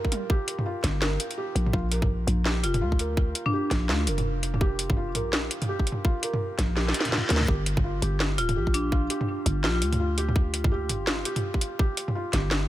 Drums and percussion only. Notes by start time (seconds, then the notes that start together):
0.05 kick
0.12 closed hi-hat, mid tom
0.30 kick
0.48 closed hi-hat
0.59 mid tom
0.84 kick, snare, closed hi-hat, mid tom
1.02 snare
1.20 closed hi-hat
1.31 closed hi-hat
1.56 closed hi-hat
1.67 mid tom
1.73 kick
1.92 closed hi-hat
2.02 kick, mid tom
2.28 closed hi-hat, mid tom
2.46 snare
2.64 closed hi-hat
2.74 closed hi-hat, mid tom
2.92 kick
2.99 closed hi-hat
3.17 kick
3.35 closed hi-hat
3.46 mid tom
3.71 kick, snare, closed hi-hat, mid tom
3.89 snare
4.07 closed hi-hat
4.18 closed hi-hat, mid tom
4.43 closed hi-hat
4.54 mid tom
4.61 kick
4.79 closed hi-hat
4.90 kick, mid tom
5.15 closed hi-hat, mid tom
5.33 snare
5.51 closed hi-hat
5.62 closed hi-hat, mid tom
5.79 kick
5.87 closed hi-hat
5.92 mid tom
6.05 kick
6.23 closed hi-hat
6.33 mid tom
6.59 kick, snare, closed hi-hat, mid tom
6.77 snare
6.89 snare
6.94 closed hi-hat
7.00 snare
7.05 closed hi-hat, mid tom
7.09 snare, mid tom
7.12 mid tom
7.18 mid tom
7.29 snare, closed hi-hat
7.36 snare
7.41 mid tom
7.48 kick
7.66 closed hi-hat
7.77 kick, mid tom
8.02 closed hi-hat, mid tom
8.20 snare
8.38 closed hi-hat
8.49 closed hi-hat, mid tom
8.67 kick
8.74 closed hi-hat
8.92 kick
9.10 closed hi-hat
9.21 mid tom
9.46 kick, closed hi-hat, mid tom
9.64 snare
9.82 closed hi-hat
9.93 closed hi-hat, mid tom
10.18 closed hi-hat
10.29 mid tom
10.36 kick
10.54 closed hi-hat
10.64 kick, mid tom
10.89 closed hi-hat, mid tom
11.07 snare
11.25 closed hi-hat
11.36 closed hi-hat, mid tom
11.54 kick
11.61 closed hi-hat
11.79 kick
11.97 closed hi-hat
12.08 mid tom
12.33 kick, snare, closed hi-hat, mid tom
12.51 snare